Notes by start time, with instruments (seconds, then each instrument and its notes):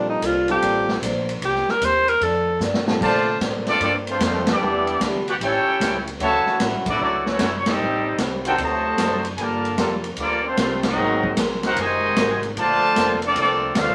Already playing: upright bass A#1, grand piano G3 C4 F4 A4, steel-string acoustic guitar D4 A4 C5
0.10 alto saxophone D#4
0.22 upright bass C2, steel-string acoustic guitar A#3 D4 A4 C5, kick, hi-hat pedal, ride
0.26 alto saxophone F4
0.48 grand piano G3 C4 F4 A4, alto saxophone G4, ride
0.61 upright bass A1, steel-string acoustic guitar A#3 D4 A4 C5, kick, ride
0.89 snare
1.02 upright bass A#1, steel-string acoustic guitar A#3 D4 A4 C5, kick, hi-hat pedal, ride
1.29 ride
1.41 upright bass C2, steel-string acoustic guitar C3 A#3 D#4 G4, alto saxophone G4, kick, ride
1.56 snare
1.67 alto saxophone A#4, muted upright bass stroke, snare
1.81 upright bass D#2, steel-string acoustic guitar C3 A#3 D#4 G4, alto saxophone C5, kick, hi-hat pedal, ride
2.08 alto saxophone A#4, ride
2.21 upright bass F2, steel-string acoustic guitar F2 D#3 A3 D4, alto saxophone A4, kick, ride
2.59 steel-string acoustic guitar F2 D#3 A3 D4, upright bass G2, snare, hi-hat pedal
2.74 snare
2.87 grand piano A#2 G3 C4 F4 A4, snare
3.00 upright bass A#2, trombone section A#2 D3 F3 A3 C4 A4, steel-string acoustic guitar A#3 D4 A4 C5, trumpet section F4 C5 D5 A5, kick, crash
3.40 upright bass A2, steel-string acoustic guitar A#3 D4 A4 C5, kick, snare, hi-hat pedal, ride
3.67 trombone section F3 A3 D4, trumpet section C4 F4 A4 D5, snare, ride
3.80 upright bass G2, trombone section F3 A3 D4, steel-string acoustic guitar A#3 D4, trumpet section C4 F4 A4 D5, kick, ride
3.84 steel-string acoustic guitar A4 C5
4.07 trombone section F3 A3 C4, trumpet section A3 D4 F4, ride
4.11 trumpet section C5
4.18 upright bass F2, trombone section F3 A3 C4, kick, snare, hi-hat pedal, ride
4.22 trumpet section A3 D4 F4 C5, steel-string acoustic guitar A#3 D4 A4 C5
4.45 trombone section G3 B3 D4, snare, ride
4.51 trumpet section B3 E4 G4 D5
4.59 upright bass E2, trombone section E3 B3 D4 G4, steel-string acoustic guitar E3 B3
4.63 steel-string acoustic guitar D4 G4
4.87 ride
5.00 upright bass D2, steel-string acoustic guitar E3 B3 D4 G4, kick, snare, hi-hat pedal, ride
5.26 trumpet section D4 G4 B4 F#5, trombone section F#4, ride
5.40 upright bass A1, steel-string acoustic guitar A2 G3 C#4 E4, trombone section C#4 E4 G4, trumpet section E4 A4 C#5 G5, kick, ride
5.64 muted upright bass stroke
5.80 upright bass C#2, steel-string acoustic guitar A2 G3 C#4 E4, kick, snare, hi-hat pedal, ride
6.07 ride
6.19 upright bass D2, trombone section C#3 E3 F#3 A3 C#4 E4 F#4, steel-string acoustic guitar D3 F#3 C#4 E4, trumpet section F#4 C#5 E5 A5, kick, ride
6.45 muted upright bass stroke, snare
6.59 upright bass A1, steel-string acoustic guitar D3 F#3 C#4 E4, kick, snare, hi-hat pedal, ride
6.72 upright bass F#1
6.85 upright bass D1, trombone section F#3 A3 D4, kick, ride
6.90 trumpet section A3 E4 F#4 D5
6.99 upright bass C#2, steel-string acoustic guitar D3 F#3 C#4 E4, trombone section F#3 A3 D4, trumpet section A3 E4, kick
7.03 trumpet section F#4 D5
7.26 trombone section F#3 A3 C#4, snare
7.30 trumpet section A3 E4 F#4 C#5
7.38 upright bass F#1, steel-string acoustic guitar D3 F#3 C#4 E4, trombone section F#3 A3 C#4, kick, snare, hi-hat pedal, ride
7.43 trumpet section A3 E4 F#4 C#5
7.58 trumpet section C#5
7.66 trombone section G3 C4 D#4, trumpet section C4 G4 A4 D#5, snare, ride
7.78 upright bass A1, steel-string acoustic guitar A2 G3 C4 D#4
8.18 upright bass C2, steel-string acoustic guitar A2 G3 C4 D#4, kick, snare, hi-hat pedal, ride
8.45 trombone section D#3 C4 D4 D#4 F#4 G4, trumpet section D#4 A4 C5 G5, ride
8.58 upright bass D2, trombone section C3 F#3 A3, steel-string acoustic guitar D3 F#3 C4 D#4, kick, ride
8.63 trumpet section F#4 C5 D#5 A5
8.98 upright bass F#2, steel-string acoustic guitar D3 F#3 C4 D#4, kick, snare, hi-hat pedal, ride
9.25 ride
9.36 upright bass G2, trombone section D3 F3 A#3, steel-string acoustic guitar G3 A#3 F4 A4, trumpet section G#5, kick, ride
9.41 trumpet section F4 A#4 D5 A5
9.65 ride
9.77 upright bass F2, steel-string acoustic guitar G3 A#3 F4 A4, trombone section G3 A#3 F4 A4, kick, snare, hi-hat pedal, ride
10.04 ride
10.16 upright bass D2, trombone section F3 A#3 D4, steel-string acoustic guitar G3 A#3 F4, trumpet section F4, kick, ride
10.21 trumpet section A#3 A4 D5, steel-string acoustic guitar A4
10.44 trombone section C4, trumpet section D4 F4
10.48 trumpet section A3 C5
10.56 upright bass C2, steel-string acoustic guitar G3 A#3 F4 A4, trumpet section A3 D4 F4 C5, trombone section C4, kick, snare, hi-hat pedal, ride
10.83 trombone section F#3 C4 D#4, trumpet section C4 F#4 A#4 D#5, snare, ride
10.96 upright bass G#1, trombone section F#3 A#3 C4 G#4, steel-string acoustic guitar G#3 C4 F#4 A#4
11.23 kick
11.37 upright bass A#1, steel-string acoustic guitar G#3 C4 F#4 A#4, kick, snare, hi-hat pedal, ride
11.50 snare
11.63 trombone section C4 D#4 F#4, trumpet section D#4 A#4 C5 F#5, snare, ride
11.76 upright bass F#1, trombone section C3 D#3 G#3, steel-string acoustic guitar G#3 C4 F#4 A#4, trumpet section D#5, kick, ride
11.81 trumpet section F#4 C5 G#5
12.16 upright bass G#1, steel-string acoustic guitar G#3 C4 F#4 A#4, kick, snare, hi-hat pedal, ride
12.43 ride
12.56 upright bass A#1, trombone section D3 F3 A3, steel-string acoustic guitar A#3 D4 A4 C5, trumpet section F4 C5 D5 A5, kick, ride
12.82 muted upright bass stroke
12.96 upright bass F1, trombone section D3 A#3 C4 A4, steel-string acoustic guitar A#3 D4 A4 C5, kick, snare, hi-hat pedal, ride
13.22 trombone section F3 A3 D4, ride
13.26 trumpet section C4 F4 A4 D5
13.36 upright bass C2, trombone section F3 A3 D4, steel-string acoustic guitar A#3 D4 A4 C5, kick, ride
13.40 trumpet section C4 F4 A4 D5
13.75 upright bass D2, trombone section A3 D4 F4, steel-string acoustic guitar A#3 D4 A4 C5, kick, snare, hi-hat pedal, ride
13.79 trumpet section D4 A4 C5 F5
13.87 upright bass A#1